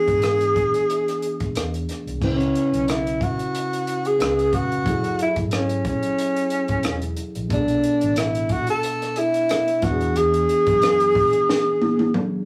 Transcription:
Already playing: tine electric piano E3 B3 D4 G#4, tenor saxophone G#4
0.08 fingered electric bass G#2, kick, closed hi-hat
0.22 cross-stick, closed hi-hat
0.41 closed hi-hat
0.56 kick, closed hi-hat
0.74 closed hi-hat
0.90 closed hi-hat
1.08 cross-stick, closed hi-hat
1.22 closed hi-hat
1.40 kick, closed hi-hat
1.55 fingered electric bass E2, cross-stick, closed hi-hat
1.74 closed hi-hat
1.89 cross-stick, closed hi-hat
2.06 fingered electric bass C2, closed hi-hat
2.18 fingered electric bass C#2, tine electric piano C#3 C#4 E4, kick, crash
2.23 tenor saxophone C#4, tine electric piano B4
2.40 closed hi-hat
2.55 closed hi-hat
2.72 fingered electric bass B1, closed hi-hat
2.88 tenor saxophone E4, cross-stick, closed hi-hat
3.07 closed hi-hat
3.21 tenor saxophone F#4, kick, closed hi-hat
3.39 closed hi-hat
3.55 closed hi-hat
3.73 closed hi-hat
3.87 closed hi-hat
4.05 tenor saxophone G#4, closed hi-hat
4.18 fingered electric bass C#2, tine electric piano C#3 C#4 B4 F5, closed hi-hat
4.22 cross-stick
4.39 closed hi-hat
4.53 fingered electric bass F1, tenor saxophone F#4, kick, closed hi-hat
4.72 closed hi-hat
4.84 fingered electric bass F#1, tine electric piano F#3 E4 G#4, kick, closed hi-hat
4.88 tine electric piano A4
5.04 closed hi-hat
5.19 tenor saxophone E4, closed hi-hat
5.36 fingered electric bass G#1, kick, closed hi-hat
5.51 tenor saxophone C#4, cross-stick, closed hi-hat
5.69 closed hi-hat
5.85 tenor saxophone C#4, kick, closed hi-hat
6.03 closed hi-hat
6.18 closed hi-hat
6.36 closed hi-hat
6.50 closed hi-hat
6.68 kick, closed hi-hat
6.83 fingered electric bass E1, cross-stick, closed hi-hat
7.02 closed hi-hat
7.17 closed hi-hat
7.35 fingered electric bass A#1, closed hi-hat
7.48 fingered electric bass B1, tine electric piano B2 B3 D4, kick, closed hi-hat
7.53 tenor saxophone D4, tine electric piano G#4
7.59 tine electric piano A4
7.68 closed hi-hat
7.83 closed hi-hat
8.01 fingered electric bass A1, closed hi-hat
8.16 tenor saxophone E4, cross-stick, closed hi-hat
8.35 closed hi-hat
8.49 tenor saxophone F#4, kick, closed hi-hat
8.67 tenor saxophone A4, closed hi-hat
8.83 closed hi-hat
9.02 cross-stick, closed hi-hat
9.16 tenor saxophone E4, closed hi-hat
9.34 closed hi-hat
9.49 cross-stick, closed hi-hat
9.68 closed hi-hat
9.82 fingered electric bass E2, tine electric piano E3 B3 D4, tenor saxophone F#4, kick, cross-stick, closed hi-hat
9.86 tine electric piano F#4
9.92 tine electric piano G#4
10.01 closed hi-hat
10.16 fingered electric bass E2, tenor saxophone G#4, closed hi-hat
10.34 closed hi-hat
10.49 closed hi-hat
10.67 fingered electric bass F#2, kick, closed hi-hat
10.82 cross-stick, closed hi-hat
11.00 closed hi-hat
11.15 kick, open hi-hat
11.33 closed hi-hat
11.49 snare
11.82 high tom
11.99 high tom
12.14 mid tom

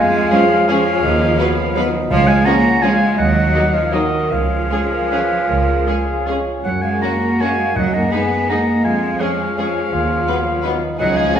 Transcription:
Already playing: double bass section F2, harp F2 G#4, cello section G#3, bassoon F4, flute section F5, oboe G#5
0.14 harp G#3
0.30 cello section F3, french horn section G#3 C#4, viola section G#3, violin section C#4 G#4, harp G#4, flute section C#5, oboe F5
0.51 harp C#5
0.66 cello section F3, french horn section G#3 C#4, viola section G#3, bassoon C#4, violin section C#4 G#4, flute section C#5, oboe F5
0.86 harp C#4
1.03 double bass section D#2, harp D#3, bassoon D#4
1.20 harp B3
1.38 french horn section F#3 B3, viola section F#3, bassoon B3, violin section B3 B4
1.58 harp B5
1.75 viola section F#3, french horn section F#3 B3, violin section B3 B4, bassoon D#4, harp B4
1.94 harp F#4
2.09 double bass section C#2, harp C#3, timpani C#3, cello section F3, bassoon F4, flute section C#5, oboe F5
2.26 cello section G#3, flute section F5, oboe G#5
2.45 french horn section F3 C#4, viola section F3, cello section A#3, violin section C#4 G#4, bassoon C#4, flute section F#5, oboe A#5
2.65 harp G#5
2.82 french horn section F3 C#4, viola section F3, cello section G#3, violin section C#4 G#4, bassoon F4, harp C#5, flute section F5, oboe G#5
3.16 double bass section D#2, harp D#3, cello section F#3, bassoon D#4, flute section D#5, oboe F#5
3.36 harp A#3
3.55 viola section F#3, french horn section F#3 D#4, violin section A#3 D#4
3.73 cello section F3, flute section C#5, oboe F5
3.92 cello section D#3, viola section F#3, french horn section F#3 D#4, violin section A#3 D#4, bassoon F#4, flute section A#4, harp A#4, oboe D#5
4.30 double bass section C#2, harp C#3, cello section F3, bassoon F4, flute section C#5, oboe F5
4.50 harp C#4
4.70 viola section G#3, french horn section G#3 C#4, violin section C#4 G#4, harp G#4, clarinet G#4
4.91 clarinet A#4
5.11 viola section G#3, french horn section G#3 C#4, violin section C#4 G#4, clarinet B4, harp C#5
5.30 harp G#4
5.48 double bass section C#2, harp C#3, clarinet A#4
5.67 harp C#4
5.86 french horn section G#3 C#4, viola section G#3, violin section C#4 G#4, harp G#4, clarinet G#4
6.07 harp G#5
6.25 french horn section G#3 C#4, viola section G#3, violin section C#4 G#4, clarinet C#5
6.46 harp G#4
6.63 double bass section F#2, harp F#2, cello section F#3, bassoon F#4, flute section C#5, oboe F#5
6.82 cello section G#3, harp A#3, flute section F5, oboe G#5
7.02 french horn section A#3 C#4, viola section A#3, cello section A#3, violin section C#4 F#4, harp F#4, flute section F#5, oboe A#5
7.21 harp C#5
7.40 cello section G#3, french horn section A#3 C#4, viola section A#3, violin section C#4 F#4, harp A#4, flute section F5, oboe G#5
7.58 harp F#4
7.75 double bass section F#2, harp F#2, timpani F#2, cello section F#3, bassoon D#4, flute section D#5, oboe F#5
7.93 harp G#3, cello section A#3, flute section F#5, oboe A#5
8.11 viola section G#3, french horn section G#3 D#4, bassoon B3, cello section B3, violin section D#4 G#4, harp G#4, flute section G#5, oboe B5
8.30 harp D#5
8.48 french horn section G#3 D#4, viola section G#3, cello section A#3, bassoon D#4, violin section D#4 G#4, harp G#4, flute section F#5, oboe A#5
8.67 harp D#4
8.84 double bass section F2, harp F2, cello section G#3, bassoon F4, flute section F5, oboe G#5
9.02 harp G#3
9.19 cello section F3, viola section G#3, french horn section G#3 C#4, violin section C#4 G#4, bassoon C#4, harp G#4, flute section C#5, oboe F5
9.39 harp C#5
9.57 cello section F3, viola section G#3, french horn section G#3 C#4, bassoon C#4, violin section C#4 G#4, harp G#4, flute section C#5, oboe F5
9.75 harp C#4
9.92 double bass section D#2, harp D#3, bassoon F4
10.09 harp B3
10.27 viola section F#3, french horn section F#3 B3, violin section B3 B4
10.46 harp B5
10.63 french horn section F#3 B3, viola section F#3, violin section B3 B4, bassoon D#4
10.82 harp F#4
10.98 double bass section C#2, harp C#3, viola section F3, cello section F#3, violin section C#4 G#4, bassoon D#4, flute section D#5, oboe F#5
11.15 cello section G#3, harp C#4, flute section F5, oboe G#5
11.34 french horn section F3 C#4, cello section A#3, bassoon C#4, harp F4, flute section F#5, oboe A#5

